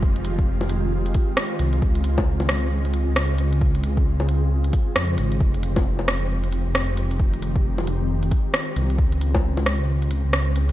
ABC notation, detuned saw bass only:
X:1
M:4/4
L:1/16
Q:"Swing 16ths" 1/4=134
K:Fm
V:1 name="Detuned saw bass" clef=bass
F,,,8- F,,,2 z4 C,,2 | D,,8- D,,3 D,,4- D,,- | D,,8- D,,2 z2 F,,2 A,,,2 | F,,,8- F,,,3 F,,,4- F,,,- |
F,,,8- F,,,2 z4 C,,2 | D,,8- D,,3 D,,4- D,, |]